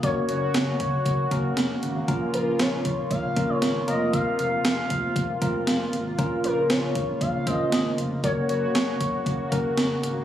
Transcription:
Already playing: A#3
0.03 F#1 C#3 A#3 C#4 F#4 A#4 C#5, kick, closed hi-hat
0.29 F#1 C#5, closed hi-hat
0.54 F#1, snare, closed hi-hat
0.80 F#1, kick, closed hi-hat
1.06 F#1, kick, closed hi-hat
1.31 F#1 A#3 C#4 F#4 A#4, kick, closed hi-hat
1.57 F1, snare, closed hi-hat
1.83 G#1, closed hi-hat
2.08 A#1 A#3 C#4 F4 A#4, kick, closed hi-hat
2.34 A#1 A#4, closed hi-hat
2.59 A#1 C#5, snare, closed hi-hat
2.85 A#1, kick, closed hi-hat
3.11 A#1 F5, kick, closed hi-hat
3.37 A#1 A#3 C#4 F4 A#4, kick, closed hi-hat
3.49 C#5
3.62 G#1, snare, closed hi-hat
3.88 F1 C3 A#3 C4 F4 A#4 D#5, closed hi-hat
4.13 F5, kick, closed hi-hat
4.39 F1 F5, closed hi-hat
4.65 F1, snare, closed hi-hat
4.90 F1, kick, closed hi-hat
5.16 F1, kick, closed hi-hat
5.42 F1 A#3 C4 F4 A#4, kick, closed hi-hat
5.67 F1, snare, closed hi-hat
5.93 G#1, closed hi-hat
6.19 A#1 C#3 A#3 C#4 F4 A#4, kick, closed hi-hat
6.44 A#1 A#4, closed hi-hat
6.70 A#1 C#5, snare, closed hi-hat
6.95 A#1, kick, closed hi-hat
7.21 A#1 F5, kick, closed hi-hat
7.47 A#1 A#3 C#4 F4 C5 D#5, kick, closed hi-hat
7.72 G#1, snare, closed hi-hat
7.98 F1, closed hi-hat
8.24 F#1 C#3 A#3 C#4 F#4 A#4 C#5, kick, closed hi-hat
8.49 F#1 C#5, closed hi-hat
8.75 F#1, snare, closed hi-hat
9.01 F#1, kick, closed hi-hat
9.26 F#1, kick, closed hi-hat
9.52 F#1 A#3 C#4 F#4 A#4, kick, closed hi-hat
9.78 F1, snare, closed hi-hat
10.03 G#1, closed hi-hat

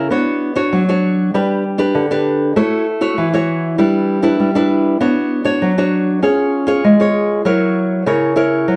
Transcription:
0.10 B3 D4 F#4 C#5
0.56 D4 F#4 C#5
0.73 F#3
0.89 D4 F#4 C#5
1.34 G3 D4 G4 B4
1.78 D4 G4 B4
1.95 D3
2.11 D4 G4 B4
2.56 A3 E4 F#4 C#5
3.01 E4 F#4 C#5
3.18 E3
3.33 E4 F#4 C#5
3.78 G3 D4 E4 B4
4.23 D4 E4 B4
4.40 G3
4.55 D4 E4 B4
5.00 B3 D4 F#4 C#5
5.44 D4 F#4 C#5
5.62 F#3
5.78 D4 F#4 C#5
6.22 C#4 F4 G#4 C#5
6.67 F4 G#4 C#5
6.84 G#3
7.00 F4 G#4 C#5
7.45 F#3 E4 A#4 C#5
8.06 C#3 E4 A#4 C#5
8.36 E4 A#4 C#5
8.68 F#3

